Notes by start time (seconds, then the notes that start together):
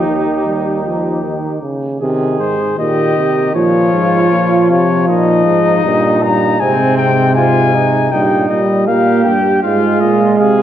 Already playing: D#2 D#4 G4
0.07 D#3
0.45 G3
0.84 F3
1.23 D#3
1.62 C#3
2.00 C3 D#3 G#4
2.39 G#2 C5
2.78 A#2 D#3 G4 D#5
3.16 C3
3.54 A#2 F3 F4 C#5
3.93 G#2
4.31 A#2
4.69 C3 C#5
5.08 A#2 D#4 D#5
5.46 G#2
5.84 G2 A#2
6.22 G2 A#5
6.60 G#2 C3 C4 G#5
6.98 G5
7.36 F4 G#5
7.74 D#4
8.12 G2 A#2 D#4 G5
8.49 A#2 G3 D#5
8.87 A#2 A#3 G4 F5
9.24 G2 G5
9.62 G#2 G#3 F4 F5
10.00 A#2 D#5
10.39 C3 G#4 F5